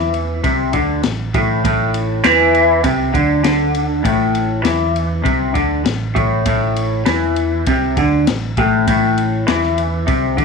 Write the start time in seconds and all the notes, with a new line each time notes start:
Already playing: E2 E3
0.14 ride
0.43 C2 C3, kick, ride
0.73 D2 D3, kick, ride
1.03 A1 A2, snare, ride
1.34 A1 A2, kick, ride
1.65 A1 A2, kick, ride
1.94 ride
2.24 E2 E3, snare, ride
2.55 ride
2.84 C2 C3, kick, ride
3.14 D2 D3, kick, ride
3.44 D2 D3, snare, ride
3.75 ride
4.04 A1 A2, kick, ride
4.35 ride
4.64 E2 E3, snare, ride
4.96 ride
5.23 C2 C3, kick, ride
5.54 D2 D3, kick, ride
5.85 A1 A2, snare, ride
6.15 A1 A2, kick, ride
6.46 A1 A2, kick, ride
6.76 ride
7.05 E2 E3, snare, ride
7.36 ride
7.66 C2 C3, kick, ride
7.97 D2 D3, kick, ride
8.27 A1 A2, snare, ride
8.57 A1 A2, kick, ride
8.88 A1 A2, kick, ride
9.18 ride
9.48 E2 E3, snare, ride
9.63 snare
9.78 ride
10.07 C2 C3, kick, ride
10.37 D2 D3, kick, ride